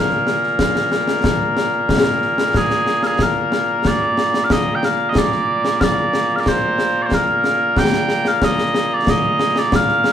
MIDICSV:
0, 0, Header, 1, 3, 480
1, 0, Start_track
1, 0, Tempo, 652174
1, 1874, Time_signature, 4, 2, 24, 8
1, 7452, End_track
2, 0, Start_track
2, 0, Title_t, "Bagpipes"
2, 0, Program_c, 0, 109
2, 0, Note_on_c, 0, 46, 89
2, 0, Note_on_c, 0, 58, 89
2, 0, Note_on_c, 0, 70, 81
2, 1889, Note_off_c, 0, 70, 0
2, 1889, Note_on_c, 0, 68, 96
2, 2231, Note_off_c, 0, 68, 0
2, 2231, Note_on_c, 0, 70, 83
2, 2258, Note_off_c, 0, 70, 0
2, 2258, Note_on_c, 0, 68, 83
2, 2371, Note_off_c, 0, 68, 0
2, 2371, Note_on_c, 0, 70, 86
2, 2851, Note_off_c, 0, 70, 0
2, 2851, Note_on_c, 0, 74, 94
2, 3269, Note_off_c, 0, 74, 0
2, 3269, Note_on_c, 0, 77, 75
2, 3326, Note_off_c, 0, 77, 0
2, 3326, Note_on_c, 0, 75, 101
2, 3497, Note_off_c, 0, 75, 0
2, 3497, Note_on_c, 0, 79, 74
2, 3568, Note_off_c, 0, 79, 0
2, 3568, Note_on_c, 0, 77, 87
2, 3747, Note_off_c, 0, 77, 0
2, 3747, Note_on_c, 0, 75, 74
2, 3814, Note_off_c, 0, 75, 0
2, 3814, Note_on_c, 0, 74, 104
2, 4271, Note_off_c, 0, 74, 0
2, 4271, Note_on_c, 0, 77, 93
2, 4296, Note_off_c, 0, 77, 0
2, 4296, Note_on_c, 0, 74, 93
2, 4678, Note_off_c, 0, 74, 0
2, 4678, Note_on_c, 0, 77, 71
2, 4710, Note_off_c, 0, 77, 0
2, 4710, Note_on_c, 0, 74, 71
2, 4771, Note_off_c, 0, 74, 0
2, 4771, Note_on_c, 0, 72, 96
2, 5169, Note_off_c, 0, 72, 0
2, 5169, Note_on_c, 0, 74, 70
2, 5195, Note_off_c, 0, 74, 0
2, 5195, Note_on_c, 0, 72, 70
2, 5256, Note_off_c, 0, 72, 0
2, 5256, Note_on_c, 0, 70, 102
2, 5729, Note_off_c, 0, 70, 0
2, 5729, Note_on_c, 0, 79, 107
2, 6095, Note_off_c, 0, 79, 0
2, 6095, Note_on_c, 0, 77, 101
2, 6213, Note_off_c, 0, 77, 0
2, 6213, Note_on_c, 0, 75, 100
2, 6580, Note_off_c, 0, 75, 0
2, 6580, Note_on_c, 0, 74, 93
2, 6695, Note_off_c, 0, 74, 0
2, 6695, Note_on_c, 0, 75, 100
2, 7057, Note_off_c, 0, 75, 0
2, 7057, Note_on_c, 0, 74, 98
2, 7177, Note_off_c, 0, 74, 0
2, 7177, Note_on_c, 0, 77, 112
2, 7452, Note_off_c, 0, 46, 0
2, 7452, Note_off_c, 0, 58, 0
2, 7452, Note_off_c, 0, 77, 0
2, 7452, End_track
3, 0, Start_track
3, 0, Title_t, "Drums"
3, 77, Note_on_c, 9, 38, 28
3, 151, Note_off_c, 9, 38, 0
3, 197, Note_on_c, 9, 38, 69
3, 270, Note_off_c, 9, 38, 0
3, 319, Note_on_c, 9, 38, 28
3, 393, Note_off_c, 9, 38, 0
3, 434, Note_on_c, 9, 35, 57
3, 434, Note_on_c, 9, 38, 98
3, 507, Note_off_c, 9, 35, 0
3, 507, Note_off_c, 9, 38, 0
3, 556, Note_on_c, 9, 38, 66
3, 629, Note_off_c, 9, 38, 0
3, 674, Note_on_c, 9, 38, 77
3, 748, Note_off_c, 9, 38, 0
3, 792, Note_on_c, 9, 38, 71
3, 866, Note_off_c, 9, 38, 0
3, 912, Note_on_c, 9, 35, 63
3, 912, Note_on_c, 9, 38, 101
3, 986, Note_off_c, 9, 35, 0
3, 986, Note_off_c, 9, 38, 0
3, 1153, Note_on_c, 9, 38, 78
3, 1227, Note_off_c, 9, 38, 0
3, 1391, Note_on_c, 9, 35, 59
3, 1391, Note_on_c, 9, 38, 103
3, 1465, Note_off_c, 9, 35, 0
3, 1465, Note_off_c, 9, 38, 0
3, 1632, Note_on_c, 9, 38, 31
3, 1706, Note_off_c, 9, 38, 0
3, 1753, Note_on_c, 9, 38, 84
3, 1827, Note_off_c, 9, 38, 0
3, 1872, Note_on_c, 9, 35, 55
3, 1872, Note_on_c, 9, 38, 89
3, 1946, Note_off_c, 9, 35, 0
3, 1946, Note_off_c, 9, 38, 0
3, 1989, Note_on_c, 9, 38, 62
3, 2062, Note_off_c, 9, 38, 0
3, 2108, Note_on_c, 9, 38, 64
3, 2182, Note_off_c, 9, 38, 0
3, 2228, Note_on_c, 9, 38, 64
3, 2301, Note_off_c, 9, 38, 0
3, 2347, Note_on_c, 9, 35, 52
3, 2347, Note_on_c, 9, 38, 89
3, 2420, Note_off_c, 9, 35, 0
3, 2420, Note_off_c, 9, 38, 0
3, 2590, Note_on_c, 9, 38, 76
3, 2664, Note_off_c, 9, 38, 0
3, 2831, Note_on_c, 9, 35, 56
3, 2831, Note_on_c, 9, 38, 95
3, 2904, Note_off_c, 9, 35, 0
3, 2904, Note_off_c, 9, 38, 0
3, 3073, Note_on_c, 9, 38, 78
3, 3146, Note_off_c, 9, 38, 0
3, 3195, Note_on_c, 9, 38, 74
3, 3269, Note_off_c, 9, 38, 0
3, 3312, Note_on_c, 9, 35, 57
3, 3312, Note_on_c, 9, 38, 97
3, 3386, Note_off_c, 9, 35, 0
3, 3386, Note_off_c, 9, 38, 0
3, 3554, Note_on_c, 9, 38, 79
3, 3628, Note_off_c, 9, 38, 0
3, 3792, Note_on_c, 9, 35, 64
3, 3792, Note_on_c, 9, 38, 106
3, 3866, Note_off_c, 9, 35, 0
3, 3866, Note_off_c, 9, 38, 0
3, 3914, Note_on_c, 9, 38, 32
3, 3988, Note_off_c, 9, 38, 0
3, 4156, Note_on_c, 9, 38, 77
3, 4229, Note_off_c, 9, 38, 0
3, 4276, Note_on_c, 9, 35, 57
3, 4276, Note_on_c, 9, 38, 105
3, 4350, Note_off_c, 9, 35, 0
3, 4350, Note_off_c, 9, 38, 0
3, 4515, Note_on_c, 9, 38, 80
3, 4589, Note_off_c, 9, 38, 0
3, 4755, Note_on_c, 9, 35, 54
3, 4755, Note_on_c, 9, 38, 92
3, 4829, Note_off_c, 9, 35, 0
3, 4829, Note_off_c, 9, 38, 0
3, 4993, Note_on_c, 9, 38, 71
3, 5067, Note_off_c, 9, 38, 0
3, 5236, Note_on_c, 9, 35, 53
3, 5236, Note_on_c, 9, 38, 92
3, 5310, Note_off_c, 9, 35, 0
3, 5310, Note_off_c, 9, 38, 0
3, 5476, Note_on_c, 9, 38, 72
3, 5550, Note_off_c, 9, 38, 0
3, 5715, Note_on_c, 9, 35, 60
3, 5715, Note_on_c, 9, 38, 95
3, 5789, Note_off_c, 9, 35, 0
3, 5789, Note_off_c, 9, 38, 0
3, 5835, Note_on_c, 9, 38, 66
3, 5909, Note_off_c, 9, 38, 0
3, 5952, Note_on_c, 9, 38, 68
3, 6025, Note_off_c, 9, 38, 0
3, 6073, Note_on_c, 9, 38, 67
3, 6146, Note_off_c, 9, 38, 0
3, 6194, Note_on_c, 9, 35, 54
3, 6194, Note_on_c, 9, 38, 96
3, 6268, Note_off_c, 9, 35, 0
3, 6268, Note_off_c, 9, 38, 0
3, 6316, Note_on_c, 9, 38, 62
3, 6390, Note_off_c, 9, 38, 0
3, 6436, Note_on_c, 9, 38, 78
3, 6509, Note_off_c, 9, 38, 0
3, 6676, Note_on_c, 9, 35, 65
3, 6676, Note_on_c, 9, 38, 98
3, 6749, Note_off_c, 9, 35, 0
3, 6749, Note_off_c, 9, 38, 0
3, 6914, Note_on_c, 9, 38, 77
3, 6988, Note_off_c, 9, 38, 0
3, 7035, Note_on_c, 9, 38, 73
3, 7109, Note_off_c, 9, 38, 0
3, 7156, Note_on_c, 9, 35, 60
3, 7156, Note_on_c, 9, 38, 102
3, 7229, Note_off_c, 9, 35, 0
3, 7229, Note_off_c, 9, 38, 0
3, 7275, Note_on_c, 9, 38, 30
3, 7349, Note_off_c, 9, 38, 0
3, 7391, Note_on_c, 9, 38, 83
3, 7452, Note_off_c, 9, 38, 0
3, 7452, End_track
0, 0, End_of_file